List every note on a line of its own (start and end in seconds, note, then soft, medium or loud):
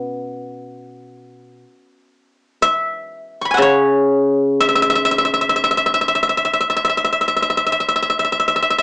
0.00 1.62 B2 medium
0.00 0.18 C#4 soft
0.00 0.79 B4 medium
2.62 3.57 E5 loud
3.41 4.80 B5 soft
3.41 4.67 C#6 soft
3.51 5.15 F#5 medium
3.51 5.00 G#5 soft
3.57 6.57 C#3 medium
3.57 4.60 E5 soft
3.62 5.53 C#5 medium
4.61 4.68 E5 medium
4.69 4.75 E5 medium
4.75 4.82 E5 medium
4.82 4.89 E5 medium
4.90 4.95 E5 medium
4.95 5.05 E5 medium
5.05 5.11 E5 medium
5.11 5.18 E5 medium
5.18 5.24 E5 medium
5.25 5.33 E5 medium
5.34 5.41 E5 medium
5.41 5.49 E5 medium
5.49 5.55 E5 medium
5.56 5.63 E5 medium
5.64 5.70 E5 medium
5.71 5.77 E5 medium
5.77 5.86 E5 medium
5.86 5.93 E5 medium
5.94 6.01 E5 medium
6.01 6.08 E5 soft
6.08 6.15 E5 medium
6.15 6.22 E5 medium
6.23 6.29 E5 medium
6.29 6.37 E5 medium
6.37 6.44 E5 medium
6.45 6.53 E5 soft
6.53 6.60 E5 medium
6.61 6.69 E5 soft
6.70 6.76 E5 medium
6.76 6.84 E5 medium
6.85 6.89 E5 medium
6.89 6.97 E5 soft
6.97 7.04 E5 medium
7.04 7.12 E5 soft
7.13 7.21 E5 medium
7.21 7.27 E5 soft
7.28 7.36 E5 soft
7.36 7.42 E5 soft
7.42 7.50 E5 medium
7.50 7.57 E5 soft
7.57 7.66 E5 medium
7.66 7.72 E5 soft
7.72 7.80 E5 medium
7.80 7.88 E5 soft
7.88 7.95 E5 medium
7.96 8.02 E5 soft
8.02 8.09 E5 medium
8.10 8.19 E5 medium
8.19 8.24 E5 medium
8.25 8.32 E5 soft
8.32 8.39 E5 medium
8.40 8.47 E5 soft
8.48 8.55 E5 medium
8.56 8.62 E5 medium
8.62 8.70 E5 medium
8.70 8.78 E5 medium
8.78 8.82 E5 medium